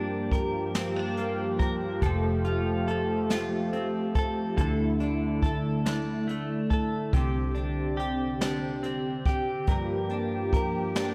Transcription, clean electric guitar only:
Already playing: G2 D4 A#4
0.33 A#4
0.75 C4
0.96 D4
1.18 A#3
1.59 A#4
2.03 F3 A4
2.45 F4
2.88 A4
3.31 F4
3.73 C4
4.15 A4
4.57 D3 A4
5.00 D4
5.43 A4
5.86 D4
6.28 A3
6.70 A4
7.13 C3 G4
7.55 D4
7.97 G4
8.41 D4
8.83 C4
9.26 G4
9.68 G2 A#4
10.11 D4
10.54 A#4
10.96 D4

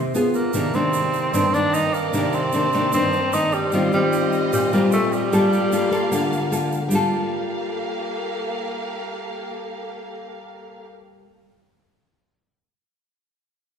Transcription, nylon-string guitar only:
Already playing: C3
0.15 B3 F4 G#4
0.54 C3 D#3 A#3 D4
0.74 D#3 A#3 D4
1.33 G2 D#3 A#3 D4
1.53 D#3 A#3 D4
2.13 C3 D#3 A#3 D4
2.54 D#3 A#3 D4
2.74 D#3 A#3 D4
2.94 G2 D#3 A#3 D4
3.34 D#3 A#3 D4
3.73 D#3 G3 C4 F4
3.93 G3 C4 F4
4.53 A#2
4.73 G3 C4 F4
5.32 G3 A#3 F4 A4
5.72 A#3 F4 A4
5.91 A#3 F4 A4
6.12 D3 A#3 F4 A4
6.51 A#3 F4 A4
6.89 G3 A#3
6.93 F4 A4

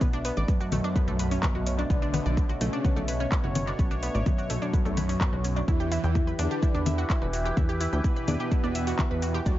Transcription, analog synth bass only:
0.01 B1
0.37 A1
0.72 B1
1.08 B1
1.55 B1
1.90 B1
2.26 B1
2.61 B1
2.97 B1
3.44 F#1
3.79 B1
4.15 A1
4.50 B1
4.86 B1
5.33 B1
5.68 E2
6.04 E2
6.39 E2
6.75 E2
7.22 E1
7.57 E2
7.93 D2
8.28 E2
8.64 E2
9.11 E2
9.46 D2

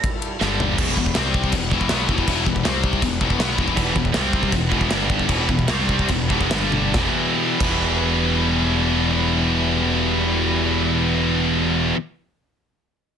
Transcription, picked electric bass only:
0.41 G1
0.78 E1
0.97 E1
1.16 C2
1.53 E1
1.71 E1
1.90 B1
2.09 E1
2.27 E1
2.46 E1
2.65 C2
3.02 E1
3.21 E1
3.39 B1
3.58 E1
3.78 E1
3.96 E1
4.16 C2
4.53 E1
4.72 E1
4.91 G1
5.29 E1
5.49 E1
5.70 C2
6.09 E1
6.30 E1
6.52 G1
6.94 E1
7.61 E1

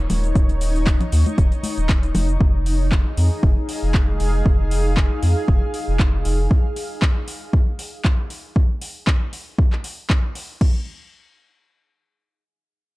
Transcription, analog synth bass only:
0.10 D#1
0.35 D#1
1.12 D#2
1.38 D#1
1.77 D#1
2.15 F1
2.40 F1
3.17 F2
3.43 F1
3.83 F1
4.20 F1
4.46 F1
5.23 F2
5.48 F1
5.88 F1
6.25 F1

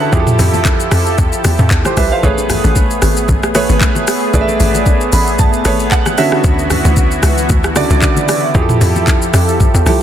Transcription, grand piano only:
Already playing: D3 C#4 F#4 G#4 A4 B4 C#5 E5 F#5
0.01 E5 A5
0.12 F3 E4 G4 G#4
0.20 A4
1.86 G4 C5
1.97 B4 E5
2.12 C5 F5
2.23 A3 G#4 B4 C#5
3.54 A3 G#4 B4 C#5
4.34 A3 G#4 B4 D5
4.41 E5
5.13 B5
5.39 A5
5.65 A3 G#4 B4 C#5 A5
5.92 F#5
6.17 D3 C#4 F#4 E5
7.76 C#3 D3 F#4 D5
8.54 F3 E4 G4 G#4
8.62 A4
9.86 F3 E4 G4 A4

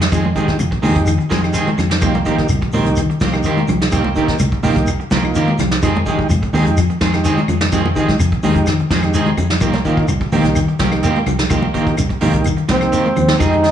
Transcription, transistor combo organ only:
0.12 G#3 D#4 G#4
0.35 G#3 D#4 G4
0.84 G#3 D#4 G4
1.42 G#3 D#4 G4
2.01 A#3 D#4 G4
2.26 A#3 D#4 G4
2.74 A#3 D#4 G4
3.33 A#3 D#4 G4
3.92 A#3 D#4 G4
4.15 A#3 D#4 G4
4.63 A#3 D#4 G4
5.23 A#3 D#4 F4
5.82 G#3 D#4 G4
6.06 G#3 D#4 G4
6.53 G#3 D#4 G4
7.14 G#3 D#4 G4
7.72 G#3 D#4 G4
7.95 G#3 D#4 G4
8.43 G#3 D#4 G4
9.03 G#3 D#4 G4
9.61 A#3 D#4 G4
9.85 A#3 D#4 F4
10.32 A#3 D#4 G4
10.92 A#3 D#4 G4
11.51 A#3 D#4 G4
11.74 A#3 D#4 G4
12.21 A#3 D#4 G4
12.81 A#3 D#4 G4
13.39 G#3 D#4 G4

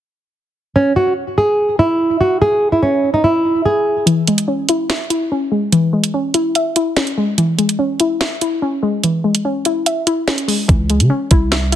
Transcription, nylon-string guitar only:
0.76 C#4
0.96 F#4
1.38 G#4
1.79 E4
2.21 F#4
2.42 G#4
2.72 E4
2.83 C#4
3.14 D#4
3.24 E4
3.65 G#4

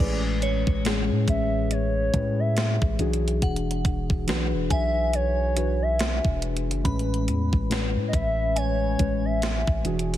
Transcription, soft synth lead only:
1.29 E5
1.72 C#5
2.40 E5
4.72 E5
5.15 C#5
5.82 E5
8.08 D#5
8.15 E5
8.58 C#5
9.25 E5

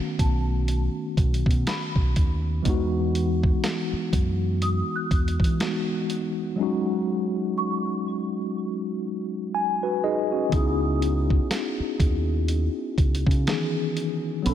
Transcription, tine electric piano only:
Already playing: D#3 A3 B3 C#4 F#4
2.63 E3 G#3 B3
2.68 D#4 F#4
5.59 E3 G#3 B3 D#4 F#4
6.56 F#3 G#3 C#4
6.61 D#4 F#4
9.55 G#5
9.83 F#4 B4
10.04 D#4 G#4 D#5
10.32 C#4 F#4
10.49 D#3 B3 C#4
10.54 D#4 E4 G#4
13.46 D#3 B3 C#4 D#4 G#4
13.52 E3
14.42 F#3 B3 C#4
14.48 D4 A4

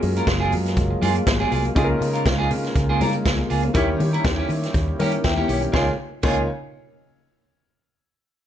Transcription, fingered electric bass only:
0.03 F#2
0.27 F#1
0.52 F#2
0.77 F#1
1.02 F#2
1.27 G#1
1.52 C2
1.76 C#2
2.01 C#3
2.26 C#2
2.51 C#3
2.76 C#2
3.00 C#3
3.26 C#2
3.51 C#2
3.75 D#2
4.00 D#3
4.25 D#2
4.49 D#3
4.75 D#2
5.00 D#3
5.25 D#2
5.49 B1
5.74 C#2
6.24 C#2

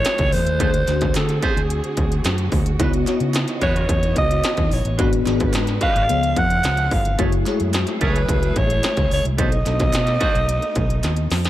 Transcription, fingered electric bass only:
0.19 C#2
0.33 E2
0.46 D#2
0.60 D2
0.87 D2
1.15 D3
1.56 D2
1.97 D2
2.25 F#2
2.52 D2
2.80 C#2
3.20 C#3
3.62 E2
3.89 E2
4.17 C#2
4.57 D#2
4.71 A#1
4.85 A1
4.99 G#1
5.26 G#1
5.54 G#2
5.95 G#1
6.10 C#2
6.37 F2
6.64 C#2
6.91 G1
7.19 F#1
7.60 F#2
8.01 C#2
8.29 C#2
8.56 A1
8.97 C#2
9.11 C#2
9.25 C2
9.38 B1
9.66 B1
9.93 B2
10.35 B1
10.76 B1
11.04 D#2
11.31 F2

